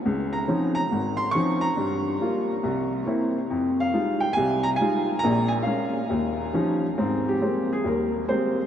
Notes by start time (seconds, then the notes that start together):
0.05 C#2
0.33 A#5
0.48 F3 C4 C#4 D#4
0.75 A#5
0.91 G#1
1.17 C6
1.31 F3 C4 C#4 C#6
1.35 D#4
1.61 A#5
1.77 G2
2.20 G3 A#3 F4
2.63 C2
3.06 A#3 C4 E4
3.50 F2
3.80 F5
3.93 G3 G#3 D#4 F4
4.20 G5
4.33 C2 C3 G#5
4.63 A#5
4.76 G#5
4.80 G3 G#3 D#4 F4
5.19 A#5
5.23 A#1 A#2
5.48 G#5
5.63 G#3 A#3 F5
5.67 C#4
6.10 D#2
6.54 F3 G3 C#4 D#4
6.98 G#2 C4
7.29 G4
7.41 G3 G#3 A#3 C4
7.73 G#4
7.84 D#2 G3 A#4
8.29 G3 G#3 A#3 C4 C5